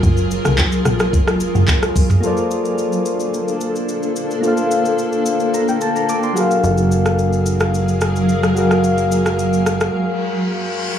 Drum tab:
HH |--------------o-|----------------|----------------|----------------|
SH |xxxxxxxxxxxxxxxx|xxxxxxxxxxxxxxxx|xxxxxxxxxxxxxxxx|xxxxxxxxxxxxxxxx|
CP |----x-------x---|----------------|----------------|----------------|
SD |---r--rr-r---r--|----------------|----------------|---r---r--r--r-r|
T2 |---------------o|----------------|----------------|----------------|
BD |o---o---o---o-o-|----------------|----------------|----------------|

HH |----------------|
SH |xxxxxxxx--------|
CP |----------------|
SD |---r--rr--------|
T2 |----------------|
BD |----------------|